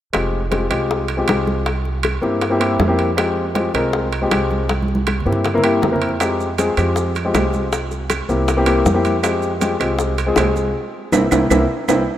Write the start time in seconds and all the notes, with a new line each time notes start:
0.13 F1 G#3 C4 F4 G4, high bongo, high conga, high timbale, claves
0.34 high conga
0.51 G#3 C4 F4 G4, high bongo, high conga, high timbale
0.70 C2 G#3 C4 F4 G4, high bongo, high timbale, claves
0.90 high bongo, high conga
1.08 high bongo, high conga, high timbale
1.17 G#3 C4 F4 G4
1.28 C2, high bongo, low bongo, high conga, high timbale, claves
1.47 high bongo, high conga
1.66 high bongo, high timbale
1.85 high bongo, high conga
2.03 high bongo, high conga, high timbale, claves
2.21 G2 A#3 C4 E4 G4, high bongo, high conga
2.41 high bongo, high conga, high timbale
2.50 A#3 C4 E4 G4
2.59 A#3 C4 E4 G4, high bongo, high conga, high timbale, claves
2.79 F2, high bongo, low bongo, high conga, low timbale
2.88 A#3 C4 E4 G4
2.99 high timbale
3.17 G#3 C4 F4 G4, high bongo, high conga, high timbale, claves
3.37 high conga
3.55 G#3 C4 F4 G4, high bongo, high conga, high timbale
3.74 C2 G#3 C4 F4 A#4, high bongo, high timbale, claves
3.93 high bongo, high conga
4.12 high bongo, high conga, high timbale
4.22 G#3 C4 F4 G4
4.31 C2, high bongo, low bongo, high conga, high timbale, claves
4.51 high bongo, high conga
4.69 high bongo, high conga, high timbale
4.82 high conga
4.88 high bongo
4.95 high conga
5.07 high bongo, high conga, high timbale, claves
5.20 low conga
5.25 G2 A#3 C4 E4 G4, high bongo
5.33 low conga
5.45 high bongo, low conga, high timbale
5.54 A#3 C4 E4 A#4, low conga
5.63 A#3 C4 E4 G4, high bongo, high timbale, claves
5.82 F2, high bongo, low bongo, low conga, low timbale
5.92 A#3 C4 E4 A#4
5.96 low conga
6.02 high timbale
6.09 low conga
6.20 G#3 C4 F4 G4, high bongo, high conga, high timbale, claves, maracas
6.40 high conga, maracas
6.58 G#3 C4 F4 G#4, high bongo, high conga, high timbale, maracas
6.77 F2 G#3 C4 F4 G4, high bongo, high timbale, claves, maracas
6.96 high bongo, high conga, maracas
7.15 high bongo, high conga, high timbale, maracas
7.25 G#3 C4 F4 G4
7.34 C2, high bongo, low bongo, high conga, high timbale, low timbale, claves, maracas
7.53 high bongo, high conga, maracas
7.73 high bongo, high conga, high timbale, maracas
7.91 high bongo, high conga, maracas
8.10 high bongo, high conga, high timbale, claves, maracas
8.29 C2 A#3 C4 E4 G4, high bongo, high conga, maracas
8.48 high bongo, high conga, high timbale, maracas
8.57 A#3 C4 E4 G4
8.66 A#3 C4 E4 G4, high bongo, high conga, high timbale, claves, maracas
8.85 F2, high bongo, low bongo, high conga, maracas
8.94 A#3 C4 E4 G4
9.05 high conga, high timbale, maracas
9.23 G#3 C4 F4 G4, high bongo, high conga, high timbale, claves, maracas
9.42 high conga, maracas
9.60 G#3 C4 F4 G4, high bongo, high conga, high timbale, maracas
9.80 C2 G#3 C4 F4 G4, high bongo, high timbale, claves, maracas
9.99 high bongo, high conga, maracas
10.18 high bongo, high conga, high timbale, maracas
10.26 G#3 C4 F4 G#4
10.36 C2, high bongo, low bongo, high conga, high timbale, low timbale, claves, maracas
10.56 high bongo, high conga, maracas
11.12 C2 A#3 C4 E4, low bongo, high conga, high timbale, claves, maracas
11.31 C2 A#3 C4 E4, low bongo, high conga, high timbale, claves, maracas
11.50 C2 A#3 C4 E4, low bongo, high conga, high timbale, claves, maracas
11.88 C2 A#3 C4 E4, low bongo, high conga, high timbale, claves, maracas